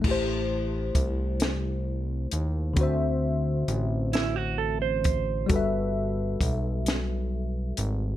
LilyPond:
<<
  \new Staff \with { instrumentName = "Clean electric guitar" } { \time 6/8 \key a \dorian \tempo 4. = 44 r2. | r4. e'16 fis'16 a'16 c''8. | r2. | }
  \new Staff \with { instrumentName = "Tine electric piano" } { \time 6/8 \key a \dorian <a e' g' c''>2. | <d c' fis' c'' e''>2. | <g fis' a' b' e''>2. | }
  \new Staff \with { instrumentName = "Analog synth bass" } { \clef bass \time 6/8 \key a \dorian a,,4 c,4. dis,8 | d,4 a,,2 | g,,4 b,,4. gis,,8 | }
  \new DrumStaff \with { instrumentName = "Drums" } \drummode { \time 6/8 <cymc bd>4 <hh bd>8 <hh sn>4 hh8 | <hh bd>4 hh8 <hh sn>4 <hh bd>8 | <hh bd>4 <hh bd>8 <hh sn>4 hh8 | }
>>